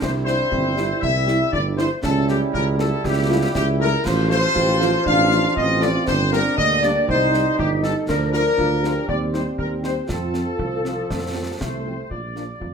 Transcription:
Already playing: euphonium D4
0.00 tuba C2, trombone section G3 E4, trumpet section C5, flute section C5, concert bass drum, snare, crash
0.25 french horn section G3 E4, trumpet section C5, flute section C5, snare
0.51 tuba G1, euphonium C4, concert bass drum
0.76 french horn section G3 E4, euphonium E4, snare
1.01 tuba C2, trumpet section E5, flute section E5, concert bass drum
1.27 french horn section G3 E4, snare
1.52 tuba G1, euphonium D4, flute section D5, trumpet section D5, concert bass drum
1.77 french horn section G3 E4, flute section C5, trumpet section C5, snare
2.02 tuba C#2, trombone section G3 E4, euphonium C#4, flute section A4, trumpet section A4, concert bass drum, snare
2.28 french horn section G3 A3 E4, flute section G4, trumpet section G4, snare
2.53 tuba C#2, flute section A#4, trumpet section A#4, concert bass drum
2.78 french horn section G3 A3 E4, flute section A4, trumpet section A4, snare
3.04 tuba C#2, euphonium E4, flute section G4, trumpet section G4, concert bass drum, snare
3.29 french horn section G3 A3 E4, euphonium F4
3.54 tuba C#2, euphonium E4, flute section G4, trumpet section G4, concert bass drum, snare
3.79 french horn section G3 A3 E4, flute section A#4, trumpet section A#4
4.05 tuba A1, trombone section F3 F4, euphonium F4, flute section C5, trumpet section C5, concert bass drum, snare, crash
4.29 french horn section F3 A3 F4, trumpet section C5, flute section C5, snare
4.55 tuba A1, euphonium G4, concert bass drum
4.80 french horn section F3 A3 F4, euphonium F4, snare
5.05 tuba A1, euphonium D4, flute section F5, trumpet section F5, concert bass drum
5.30 french horn section F3 A3 F4, snare
5.56 tuba A1, euphonium C4, flute section D#5, trumpet section D#5, concert bass drum
5.80 french horn section F3 A3 F4, flute section D5, trumpet section D5, snare
6.05 tuba G1, trombone section G3 D4, flute section C5, trumpet section C5, concert bass drum, snare
6.31 french horn section G3 A#3 D4, flute section A#4, trumpet section A#4, snare
6.56 tuba D2, euphonium A#3, flute section D#5, trumpet section D#5, concert bass drum
6.81 french horn section G3 A#3 D4, flute section D5, trumpet section D5, snare
7.07 tuba C2, euphonium D#4, trombone section D#4, flute section C5, trumpet section C5, concert bass drum
7.32 french horn section G3 D#4, snare
7.58 tuba G1, flute section G4, trumpet section G4, concert bass drum
7.82 french horn section G3 D#4, trumpet section A4, flute section A4, snare
8.07 tuba D2, trombone section F3 D4, euphonium D4, flute section A#4, trumpet section A#4, concert bass drum, snare, crash
8.32 french horn section F3 D4 F4, flute section A#4, trumpet section A#4, snare
8.58 tuba D2, euphonium F4, concert bass drum
8.83 french horn section F3 D4 F4, euphonium G4, snare
9.08 tuba D#2, trombone section G3 C4, trumpet section D5, flute section D5, concert bass drum
9.33 french horn section G3 C4 D#4, trumpet section C5, flute section C5, snare
9.58 tuba D#2, euphonium G4, trumpet section A#4, flute section A#4, concert bass drum
9.83 french horn section G3 C4 D#4, trumpet section C5, flute section C5, snare
10.08 tuba F2, trombone section F3 C4, euphonium F4, trumpet section A4, flute section A4, concert bass drum, snare
10.34 french horn section F3 C4, snare
10.58 tuba C2, trombone section F3, concert bass drum
10.84 french horn section F3 C4, trombone section F3, snare
11.09 tuba F2, concert bass drum, snare
11.35 french horn section F3 C4
11.59 tuba C2, trombone section A3, trumpet section C5, concert bass drum, snare
11.85 french horn section F3 C4
12.10 tuba A#1, euphonium F4, trumpet section D5, concert bass drum
12.35 french horn section F3 A#3 D4, euphonium D4, snare
12.60 tuba F2, euphonium F4, concert bass drum

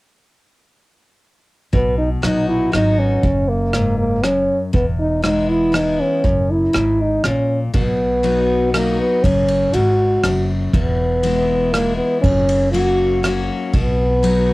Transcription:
1.73 upright bass B1, steel-string acoustic guitar B2, french horn B3, kick
1.98 french horn D#4
2.22 upright bass A#1, steel-string acoustic guitar F#3 B3 D#4 F#4, french horn D#4, cross-stick
2.49 french horn E4
2.72 upright bass G#1, steel-string acoustic guitar F#3 B3 D#4 F#4, french horn D#4, cross-stick
2.99 french horn C#4
3.23 upright bass F#1, steel-string acoustic guitar F#2, kick
3.49 french horn A#3
3.73 steel-string acoustic guitar G#2, cross-stick
3.98 french horn A#3
4.24 steel-string acoustic guitar F#2, french horn C#4, cross-stick
4.73 upright bass E1, steel-string acoustic guitar E2, french horn B3, kick
5.00 french horn D#4
5.23 steel-string acoustic guitar E3 G#3 B3 E4, french horn D#4, cross-stick
5.50 french horn E4
5.72 steel-string acoustic guitar E3 G#3 B3 E4, french horn D#4, cross-stick
6.00 french horn C#4
6.24 upright bass F#1, steel-string acoustic guitar F#2, kick
6.50 french horn E4
6.73 upright bass G#1, steel-string acoustic guitar G#2, cross-stick
7.01 french horn D#4
7.24 upright bass A#1, steel-string acoustic guitar A#2, french horn C#4, cross-stick
7.73 upright bass B1, steel-string acoustic guitar B2, french horn B3, kick, ride
8.23 steel-string acoustic guitar F#3 B3 D#4 F#4, ride
8.74 steel-string acoustic guitar F#3 B3 D#4 F#4, french horn A#3, cross-stick, ride
9.00 french horn B3
9.23 upright bass F#1, steel-string acoustic guitar F#2, french horn C#4, kick, ride
9.48 ride
9.73 upright bass G#1, steel-string acoustic guitar G#2, french horn F#4, ride
10.24 upright bass F#1, steel-string acoustic guitar F#2, cross-stick, ride
10.73 upright bass E1, steel-string acoustic guitar E2, french horn B3, kick, ride
11.23 steel-string acoustic guitar E3 G#3 B3 E4, ride
11.72 steel-string acoustic guitar E3 G#3 B3 E4, french horn A#3, cross-stick, ride
11.96 french horn B3
12.22 upright bass F#1, steel-string acoustic guitar F#2, french horn C#4, kick, ride
12.49 ride
12.72 steel-string acoustic guitar F#3 A#3 C#4 F#4, french horn F#4, ride
13.23 steel-string acoustic guitar F#3 A#3 C#4 F#4, cross-stick, ride
13.73 upright bass B1, steel-string acoustic guitar B2, french horn B3, kick, ride
14.23 steel-string acoustic guitar F#3 B3 D#4 F#4, ride

